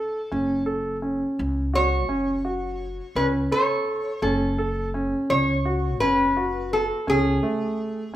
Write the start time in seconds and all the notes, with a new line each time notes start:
Already playing: A4
0.32 F#1 C#4
0.66 A4
1.02 C#4
1.39 C#2
1.73 F#4 C#5
2.09 F#1 C#4
2.45 F#4
3.15 C#2 C#4 B4
3.52 A4 C#5
4.22 F#1 C#4 A4
4.58 A4
4.94 C#4
5.30 C#2 C#5
5.65 F#4
6.00 F#1 C#4 B4
6.37 F#4
6.73 A4
7.07 C#2 C#4 G#4
7.43 A3